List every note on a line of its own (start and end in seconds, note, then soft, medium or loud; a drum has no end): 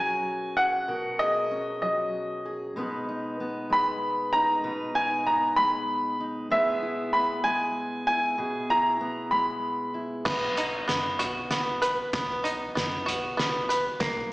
0.00 0.84 B2 soft
0.00 1.80 F#3 soft
0.00 0.85 C#4 soft
0.00 0.57 G#4 soft
0.00 0.85 A#4 medium
0.00 0.59 G#5 medium
0.57 0.91 G#4 soft
0.57 1.22 F#5 medium
0.88 2.72 B2 medium
0.88 2.72 A#4 medium
1.19 2.45 G#4 soft
1.19 1.80 D#5 medium
1.51 2.73 C#4 soft
1.82 2.76 F#3 soft
1.82 2.49 D#5 medium
2.45 2.77 G#4 soft
2.76 4.63 B2 medium
2.76 3.69 G#3 soft
2.76 3.40 B3 soft
2.76 3.08 D#4 soft
2.76 4.64 B4 soft
3.09 4.32 D#4 soft
3.40 5.26 B3 soft
3.70 5.57 G#3 soft
3.70 4.30 B5 medium
4.33 4.93 D#4 soft
4.33 4.97 A#5 medium
4.64 6.50 B2 medium
4.64 6.53 B4 soft
4.95 6.19 D#4 soft
4.95 5.24 G#5 medium
5.26 6.51 B3 soft
5.26 5.59 A#5 medium
5.56 6.51 G#3 medium
5.56 6.23 B5 medium
6.20 6.52 D#4 soft
6.50 8.37 B2 medium
6.50 7.44 G#3 soft
6.50 7.15 B3 soft
6.50 6.82 E4 soft
6.50 8.37 G#4 medium
6.50 7.16 E5 medium
6.82 8.06 E4 soft
7.13 9.00 B3 soft
7.13 7.46 B5 medium
7.44 8.35 G#3 medium
7.44 8.05 G#5 medium
8.07 8.35 E4 soft
8.07 8.72 G#5 medium
8.38 10.22 B2 medium
8.38 10.26 G#4 medium
8.70 9.93 E4 soft
8.70 9.29 A#5 medium
9.01 12.13 B3 soft
9.31 10.22 G#3 medium
9.31 9.98 B5 medium
9.94 10.22 E4 soft
10.25 10.79 B1 medium
10.25 10.86 B3 medium
10.25 kick medium
10.25 snare soft
10.25 crash medium
10.57 11.83 D#4 medium
10.57 closed hi-hat medium
10.88 11.15 F#2 medium
10.88 11.49 B3 medium
10.88 snare soft
10.88 closed hi-hat medium
11.19 12.00 B1 medium
11.19 12.44 F#4 medium
11.19 closed hi-hat medium
11.51 12.12 B3 medium
11.51 snare soft
11.51 closed hi-hat medium
11.82 13.07 B4 medium
11.82 closed hi-hat medium
12.13 12.66 B1 medium
12.13 12.74 B3 medium
12.13 kick loud
12.13 snare medium
12.13 closed hi-hat medium
12.44 13.69 D#4 medium
12.44 closed hi-hat medium
12.75 13.02 F#2 medium
12.75 13.36 B3 medium
12.75 snare medium
12.75 closed hi-hat medium
13.06 13.86 B1 medium
13.06 14.00 F#4 medium
13.06 closed hi-hat medium
13.37 14.00 B3 medium
13.37 snare medium
13.37 closed hi-hat medium
13.69 14.01 B4 medium
13.69 closed hi-hat medium
14.00 14.33 B1 medium
14.00 14.33 A#3 medium
14.00 kick loud
14.00 snare medium
14.00 closed hi-hat medium